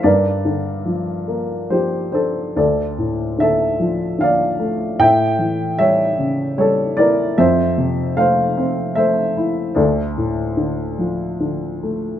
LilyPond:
<<
  \new Staff \with { instrumentName = "Upright piano" } { \time 3/4 \key d \minor \tempo 4 = 75 <bes' d''>2 <g' c''>8 <a' c''>8 | <a' d''>4 <a' e''>4 <d'' f''>4 | <e'' g''>4 <cis'' e''>4 <a' cis''>8 <bes' d''>8 | <c'' e''>4 <c'' f''>4 <c'' e''>4 |
<a' d''>2 r4 | }
  \new Staff \with { instrumentName = "Upright piano" } { \clef bass \time 3/4 \key d \minor g,8 d8 f8 bes8 f8 d'8 | d,8 a,8 d8 f8 d8 a8 | a,8 e8 g8 cis8 g8 e'8 | f,8 c8 a8 c'8 a8 e'8 |
d,8 a,8 d8 f8 d8 a8 | }
>>